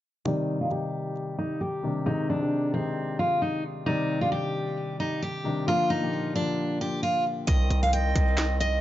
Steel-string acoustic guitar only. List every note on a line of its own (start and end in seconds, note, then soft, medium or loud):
0.25 0.58 D#4 medium
0.61 0.71 F4 medium
0.71 1.35 G4 medium
1.39 1.60 D#4 medium
1.61 2.04 G4 medium
2.06 2.27 D#4 loud
2.30 2.72 D4 medium
2.74 3.16 C4 medium
3.19 3.40 F4 medium
3.42 3.63 D#4 medium
3.86 4.19 D#4 medium
4.21 4.31 F4 medium
4.32 4.96 G4 medium
5.00 5.21 D#4 medium
5.22 5.65 G4 medium
5.68 5.89 F4 medium
5.90 6.32 D#4 medium
6.36 6.78 D4 medium
6.81 7.02 G4 medium
7.03 7.24 F4 medium
7.47 7.80 D#5 loud
7.83 7.92 F5 medium
7.93 8.57 G5 medium
8.60 8.81 D#5 medium